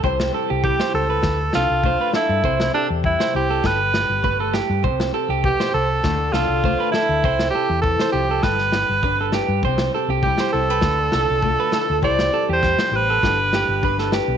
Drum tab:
SD |-o---o--o-o---o-|-o---o--o-o---o-|-o---o--o-o---o-|-o---o--ooo---o-|
BD |o---o---o---o---|o---o---o---o---|o---o---o---o---|o---o---o---o---|

SD |-o---o--o-o---o-|-o--oo--o-o--oo-|
BD |o---o---o---o---|o---o---o---o---|